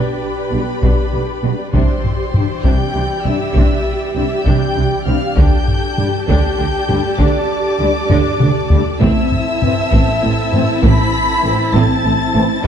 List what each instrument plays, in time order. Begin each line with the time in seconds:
Already playing: viola section D4 G4, string section D4 G4 D5 G5, flute section B4, violin section B4 B5
0.51 double bass section B1, cello section B2, french horn section G3 D4, viola section B3
0.83 double bass section B1, cello section B2, viola section D4, taiko
1.13 double bass section B1, cello section B2, viola section D4
1.42 double bass section B1, cello section B2, french horn section G3 D4, viola section B3
1.72 double bass section C2, cello section C3, string section E3 G4 D5 G5, viola section D4 G4, flute section C5, violin section C5 C6, taiko
2.04 taiko low-mid
2.34 french horn section G3 D4, taiko low-mid
2.64 double bass section C2, cello section C3, viola section D4, violin section G5 G6, flute section G5, taiko
2.95 double bass section C2, cello section C3, viola section D4
3.24 double bass section C2, cello section C3, french horn section G3 D4, viola section C4, violin section E5 E6, flute section E5, taiko low-mid
3.55 double bass section C2, cello section C3, viola section D4, taiko
4.14 double bass section C2, cello section C3, french horn section G3 D4, viola section C4, flute section E5, violin section E5 E6
4.46 double bass section C2, cello section C3, viola section D4, flute section G5, violin section G5 G6, taiko
4.76 double bass section C2, cello section C3, viola section D4
5.06 double bass section C2, cello section C3, french horn section G3 D4, viola section C4, flute section F5, violin section F5 F6
5.35 double bass section D2, cello section D3, string section D4 G4 A4 A5, viola section D4 G4, violin section G5 G6, flute section G5, taiko
5.68 taiko low-mid
5.98 french horn section G3 D4, taiko low-mid
6.27 double bass section D2, cello section D3, viola section D4, flute section G5, violin section G5 G6, taiko
6.58 double bass section D2, cello section D3, viola section D4
6.88 double bass section D2, cello section D3, french horn section G3 D4, viola section A3, taiko low-mid
7.17 double bass section D2, cello section D3, viola section D4, flute section D5, violin section D5 D6, taiko
7.79 double bass section D2, cello section D3, french horn section G3 D4, viola section A3
8.10 double bass section D2, cello section D3, viola section D4, taiko low-mid
8.40 double bass section D2, cello section D3, viola section D4, taiko mid
8.70 double bass section D2, cello section D3, french horn section G3 D4, viola section A3, taiko low
9.00 double bass section A1, cello section A2, viola section C4 E4, string section C4 E4 A4 A5, flute section E5, violin section E5 E6, taiko
9.32 taiko low-mid
9.61 french horn section E3 C4, taiko low-mid
9.92 double bass section A1, cello section A2, viola section C4, taiko
10.23 double bass section A1, cello section A2, viola section C4
10.51 double bass section A1, cello section A2, french horn section E3 C4, viola section A3, taiko low-mid
10.82 double bass section A1, cello section A2, viola section C4, flute section B5, violin section B5 B6, taiko
11.43 double bass section A1, cello section A2, french horn section E3 C4, viola section A3
11.74 double bass section A1, cello section A2, viola section C4, flute section A5, violin section A5 A6, taiko
12.04 double bass section A1, cello section A2, viola section C4
12.34 double bass section A1, cello section A2, french horn section E3 C4, viola section A3
12.64 viola section G4, violin section G6